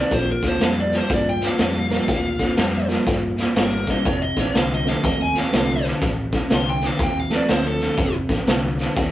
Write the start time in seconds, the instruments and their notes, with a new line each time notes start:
Already playing: clean electric guitar D#3 C4
0.00 lead electric guitar D5
0.11 fingered electric bass A#1, clean electric guitar A#2 F3, lead electric guitar C5, kick, snare, closed hi-hat
0.31 lead electric guitar A#4
0.43 fingered electric bass D2, clean electric guitar A#2 F3, kick, snare, closed hi-hat
0.48 lead electric guitar C5
0.61 fingered electric bass F2, clean electric guitar A#2 G3, lead electric guitar F5, snare, closed hi-hat
0.80 lead electric guitar D5
0.92 clean electric guitar A#2 G3, lead electric guitar C5, snare, closed hi-hat
1.10 fingered electric bass G2, clean electric guitar A#2 F3, lead electric guitar D5, kick, snare, closed hi-hat
1.29 lead electric guitar G5
1.40 clean electric guitar A#2 F3, snare, closed hi-hat
1.47 lead electric guitar F5
1.58 fingered electric bass F2, clean electric guitar A#2 G3, snare, closed hi-hat
1.90 clean electric guitar A#2 G3, reed electric piano F3 A#3 D4 F4 A#4, snare, closed hi-hat
2.07 fingered electric bass D2, clean electric guitar A#2 F3, kick, snare, closed hi-hat
2.38 clean electric guitar A#2 F3, kick, snare, closed hi-hat
2.57 fingered electric bass F2, clean electric guitar A#2 G3, snare, closed hi-hat
2.88 clean electric guitar A#2 G3, reed electric piano F3 A#3 D4 F4 A#4, snare, closed hi-hat
3.06 fingered electric bass G2, clean electric guitar A#2 F3, kick, snare, closed hi-hat
3.37 clean electric guitar A#2 F3, snare, closed hi-hat
3.55 fingered electric bass G1, clean electric guitar A#2 G3, lead electric guitar A#4, snare, closed hi-hat
3.87 clean electric guitar A#2 G3, lead electric guitar D#5, kick, snare, closed hi-hat
4.04 fingered electric bass F1, clean electric guitar F2 C3, lead electric guitar C#5, kick, snare, closed hi-hat
4.22 lead electric guitar D#5
4.37 fingered electric bass A1, clean electric guitar F2 C3, lead electric guitar C#5, kick, snare, closed hi-hat
4.54 fingered electric bass C2, clean electric guitar F2 D3, lead electric guitar F5, snare, closed hi-hat
4.74 lead electric guitar D#5
4.85 clean electric guitar F2 D3, reed electric piano F3 A3 C4 F4 A4, snare, closed hi-hat
4.89 lead electric guitar F5
5.03 fingered electric bass D#2, clean electric guitar F2 C3, lead electric guitar D#5, kick, snare, closed hi-hat
5.22 lead electric guitar G#5
5.35 clean electric guitar F2 C3, lead electric guitar F5, snare, closed hi-hat
5.52 fingered electric bass C2, clean electric guitar F2 D3, reed electric piano F3 A3 C4 F4 A4, snare, closed hi-hat
5.84 clean electric guitar F2 D3, snare, closed hi-hat
6.01 fingered electric bass A1, clean electric guitar F2 C3, kick, snare, closed hi-hat
6.32 clean electric guitar F2 C3, kick, snare, closed hi-hat
6.50 fingered electric bass C2, clean electric guitar F2 D3, lead electric guitar C6, snare, closed hi-hat
6.70 lead electric guitar G5
6.81 clean electric guitar F2 D3, snare, closed hi-hat
6.86 lead electric guitar F5
6.99 fingered electric bass D#2, clean electric guitar F2 C3, kick, snare, closed hi-hat
7.03 lead electric guitar G5
7.20 lead electric guitar F5
7.30 clean electric guitar F2 C3, reed electric piano F3 A3 C4 F4 A4, snare, closed hi-hat
7.35 lead electric guitar D5
7.48 fingered electric bass D2, clean electric guitar F2 D3, lead electric guitar C5, snare, closed hi-hat
7.67 lead electric guitar A4
7.79 clean electric guitar F2 D3, snare, closed hi-hat
7.98 fingered electric bass F1, clean electric guitar F2 C3, kick, snare, closed hi-hat
8.29 fingered electric bass A1, clean electric guitar F2 C3, kick, snare, closed hi-hat
8.47 fingered electric bass C2, clean electric guitar F2 D3, snare, closed hi-hat
8.79 clean electric guitar F2 D3, snare, closed hi-hat
8.97 fingered electric bass D#2, clean electric guitar F2 C3, kick, snare, closed hi-hat